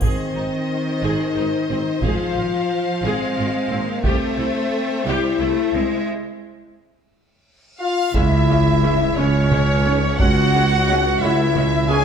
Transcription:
0.01 G#1 D#3 C4 G#4 C5 D#5, taiko, triangle
0.35 G#1 D#4
1.03 G#1 D#4 G#4
1.36 G#1 D#4
1.70 G#1 C4
2.02 G#1 F3 F4 G#4 F5, taiko
2.37 G#1 F4
3.03 G#1 G#3 C4 G#4
3.37 G#1 F4
3.70 G#1 A#3 C4
4.04 C2 A3 C4 G4 C5 E5, taiko
4.37 C2 E4
5.05 C2 G3 E4 G4
5.39 C2 A3 E4
5.73 C2 G#3 C4
6.08 reverse cymbal
7.80 F4 F5
8.14 C#2 G#3 C#4 E4 E5, taiko, sub drop
8.49 G#3 C#4
8.83 G#2 G#3 C#4
9.16 C#2 G#3 C#4 C#5
9.51 G#3 C#4, taiko mid
9.86 G#2 G#3 C#4
10.19 C#2 G#3 C#4 F#4 F#5, taiko
10.55 G#3 C#4
10.89 G#2 G#3 C#4
11.21 C#2 G#3 C#4 E4 E5
11.55 G#3 C#4, taiko mid
11.88 G#2 G#3 C#4 G#4 G#5

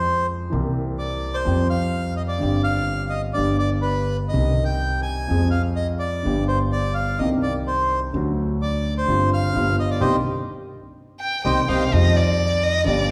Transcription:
Already playing: F2 F3 G#3 C4 G#4 C5
0.50 C2 C3 E3 A#3 C4
0.54 G4
0.99 D5
1.34 C5
1.45 F2 F3 G3 C4 G4
1.70 F5
2.17 D#5
2.28 D5
2.38 G1 G2 D3 G3 C4
2.42 G1 G4
2.64 F5
3.10 D#5
3.33 G1 G2 D3 G3 D5
3.37 G1 B3 G4
3.59 D5
3.82 B4
4.29 D#3 D#5
4.33 C2 C3 G3 C4 D#4
4.65 G5
5.02 G#5
5.28 F2 F3 G#3 C4 G#4
5.51 F5
5.76 D#5
5.99 D5
6.23 G1 G2 D3 G3 B3 G4
6.48 C5
6.72 D5
6.94 F5
7.19 C2 C3 D#3 G3 C4 D#5
7.23 G4
7.43 D5
7.67 C5
8.12 D2 D3 F#3 A3 F#4
8.62 D5
8.98 C5
9.06 G1 G2 D3 G3 C4
9.10 F4
9.33 F5
9.53 G1 G2 D3 G3 B3 F4
9.80 D#5
9.91 D5
10.01 C2 C3 D#3 G3 G4 C5 D#5
11.20 G5
11.44 C2 C3 D#3 G3 G4 C5 D#5 G5
11.68 C2 C3 D#3 G3 G4 C5 D#5 F5
11.91 F2 D#3 F3 G#3 C4 F4 D#5
12.17 D5
12.64 D#5
12.84 G1 G2 D3 G3 B3 D5
12.88 G4

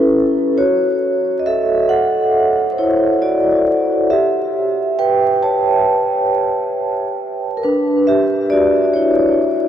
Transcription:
Already playing: C#4 E4 A4 B4
0.58 F#4 C#5
1.39 D#5
1.46 A4 E5
1.89 A4 F#5
2.72 C5
2.78 E4 C#5
3.22 F#4 D5
4.10 G4 E5
4.99 B4 G5
5.43 C#5 A5
7.57 A#4
7.63 D4 B4
8.07 G4 E5
8.50 F#4 D5
8.94 E4 C#5

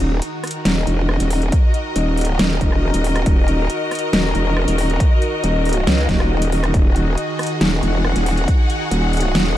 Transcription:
Already playing: D#1 D#3 D#4 F#4 A#4
0.00 closed hi-hat
0.22 closed hi-hat
0.44 cross-stick, closed hi-hat, open hi-hat
0.51 closed hi-hat
0.64 D#1 D#5, snare, closed hi-hat
0.87 E1, closed hi-hat
1.09 cross-stick
1.20 D#1, closed hi-hat
1.31 open hi-hat
1.42 closed hi-hat
1.52 kick, closed hi-hat
1.74 closed hi-hat
1.96 D#1, closed hi-hat
2.17 closed hi-hat, open hi-hat
2.25 closed hi-hat
2.39 D#1, snare, closed hi-hat
2.61 E1, kick, closed hi-hat
2.72 cross-stick
2.94 D#1, closed hi-hat
3.04 open hi-hat
3.16 cross-stick, closed hi-hat
3.26 D#1, kick, closed hi-hat
3.48 closed hi-hat
3.70 closed hi-hat
3.91 cross-stick, closed hi-hat, open hi-hat
3.99 closed hi-hat
4.13 D#1, snare, closed hi-hat
4.35 E1, closed hi-hat
4.57 cross-stick
4.68 D#1, closed hi-hat
4.78 open hi-hat
4.90 closed hi-hat
5.00 kick, closed hi-hat
5.22 closed hi-hat
5.44 D#1, closed hi-hat
5.65 closed hi-hat, open hi-hat
5.73 closed hi-hat
5.87 C#2, snare, closed hi-hat
6.09 D#1, kick, snare, closed hi-hat
6.20 cross-stick
6.42 closed hi-hat
6.52 open hi-hat
6.64 cross-stick, closed hi-hat
6.74 D#1 G#4, kick, closed hi-hat
6.96 closed hi-hat
7.18 closed hi-hat
7.39 cross-stick, closed hi-hat, open hi-hat
7.47 closed hi-hat
7.60 D#1 F#5, snare, closed hi-hat
7.83 E1, closed hi-hat
8.05 cross-stick
8.16 D#1, closed hi-hat
8.26 open hi-hat
8.38 closed hi-hat
8.48 kick, closed hi-hat
8.70 closed hi-hat
8.91 D#1, closed hi-hat
9.13 closed hi-hat, open hi-hat
9.20 closed hi-hat
9.35 D#1, snare, closed hi-hat

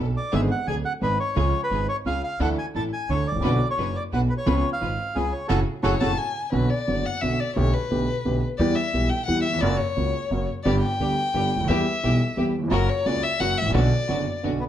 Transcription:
0.00 B1 B2 B3 D4 A4
0.17 D5
0.32 G#1 G#2 D3 G#3 B3 D4 G#4 E5
0.51 F#5
0.67 D1 D2 B3 D4 G#4 G#5
0.85 F#5
1.01 G#1 G#2 B3 D4 G#4 B4
1.20 C#5
1.36 C#2 C#3 F3 G#3 C#4 F4 G#4 C#5
1.64 B4
1.70 G#1 G#2 C#4 F4 G#4
1.89 C#5
2.05 C#2 C#3 C#4 F4 G#4 F5
2.24 F5
2.40 D2 D3 E3 A3 D4 E4 A4 F#5
2.59 G#5
2.75 A1 A2 D4 E4 A4 A5
2.93 G#5
3.09 D2 D3 D4 E4 A4 C#5
3.27 G#1 D5
3.32 G#1 A1
3.36 A1 A#1
3.40 A#1 B1 D4 F#4 B4
3.44 B1 B2 D3 F#3 B3 F#4 D5
3.70 C#5
3.78 F#1 F#2 D4 F#4 B4
3.96 D5
4.12 B1 B2 D4 F#4 B4 F#5
4.30 B4
4.38 C#5
4.46 C#2 C#3 F3 B3 C#4 F4 G#4 B4
4.73 F5
4.81 G#1 G#2 C#4 F4 B4
5.15 C#2 C#3 C#4 F4 G#4 B4
5.33 C#5
5.48 F#1 A2 C#3 F#3 F#4 G#4 A4 C#5 F#5
5.83 F#1 A2 C#3 F#3 F#4 G#4 A4 C#5 F#5
6.00 F#1 A2 C#3 F#3 F#4 G#4 A4 C#5 F#5 A5
6.18 G#5
6.52 B1 B2 D3 F#3 B3 F#4 B4
6.70 D5
6.87 F#1 F#2 D3 F#3 B3 F#4
7.06 F#5
7.21 B1 B2 D3 F#3 B3 F#4 E5
7.40 D5
7.56 B1 B2 D3 A3 B3 G4 C#5
7.73 B4
7.91 B1 B2 D3 A3 B3 G4
8.25 B1 B2 D3 A3 B3 G4
8.58 E2 E3 G3 B3 G4 D5
8.75 E5
8.93 B1 B2 E3 G3 B3 G4
9.09 G5
9.26 E2 E3 G3 B3 G4 F#5
9.43 E5
9.49 D#2
9.53 E2
9.58 F#1 F2 D5
9.62 F#2 C#3 F#3 A#3 F#4
9.77 C#5
9.96 C#2 C#3 F#3 A#3 F#4
10.30 F#1 F#2 C#3 F#3 A#3 F#4
10.64 G1 G2 D3 G3 B3 D4 G4 D5
10.81 G5
10.99 D2 D3 G3 B3 D4 G4
11.34 G1 G2 D3 G3 B3 D4 G4
11.56 C#2
11.60 D2
11.64 D#2 E5
11.69 E2 E3 G3 B3 E4 G4
12.03 B1 B2 E3 G3 B3 E4 G4
12.37 E2 E3 G3 B3 E4 G4
12.58 D#2
12.63 E2
12.68 F#1 F2 F#2 C#3 F#3 A#3 C#4 F#4 A#4
12.72 F#4
12.89 C#5
13.06 C#2 C#3 F#3 A#3 C#4 F#4 D5
13.23 E5
13.40 F#1 F#2 C#3 F#3 A#3 C#4 F#4 F#5
13.58 G#1 E5
13.62 G#1
13.66 A1 A#1
13.70 A#1 B1 B2 D3 F#3 B3
13.74 B1 D4 F#4 D5
14.09 F#1 F#2 D3 F#3 B3 D4 F#4
14.43 B1 B2 D3 F#3 B3 D4 F#4
14.60 B3

